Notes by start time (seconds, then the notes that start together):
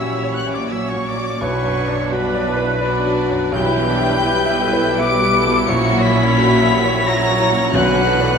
Already playing: A#1 A#2 F#3 C#4 E4 G4 C#5 E5 E6
0.00 E3 F#4
0.23 C#5
0.35 F#5 F#6
0.47 C#4
0.53 D5 D6
0.70 F#3 C#4 F#4 C#5 E5 E6
0.89 C#5 C#6
0.96 A#2
1.07 D5 D6
1.19 F#3
1.40 B1 B2 F#3 D4 E4 F#4 B4 C#5 C#6
1.64 F#2
1.75 D4
1.88 D4
2.11 F#3 G3 D4 F#4 B4 B5
2.34 D5
2.45 F#3 E4
2.57 B4
2.80 F#3 D4 F#4 D5
3.06 F#3
3.29 F#2
3.52 B1 B2 E3 G3 E4 G4 B4 G5 G6
3.77 B2
3.88 D4
3.98 E4
4.23 G3 E4 G4
4.46 E5
4.60 E4 A4
4.73 B4
4.98 B3 E4 G4 B4 D6 D7
5.22 G3
5.35 A4
5.46 B2
5.68 A#1 A#2 F#3 C#4 E4 F#4 A#4 C#5 C#6 C#7
5.93 A#2
6.02 B5 B6
6.16 E4
6.36 F#3 F#4
6.62 E5
6.71 E3 G4
6.84 C#5
7.06 F#3 C#4 E4 F#4 C#5 A#5 A#6
7.30 F#3
7.40 E4
7.52 A#2
7.71 B1 B2 D3 D4 F#4 B4 F#5 F#6
7.76 F#5
7.98 F#3
8.07 E3 A4
8.19 D4 B4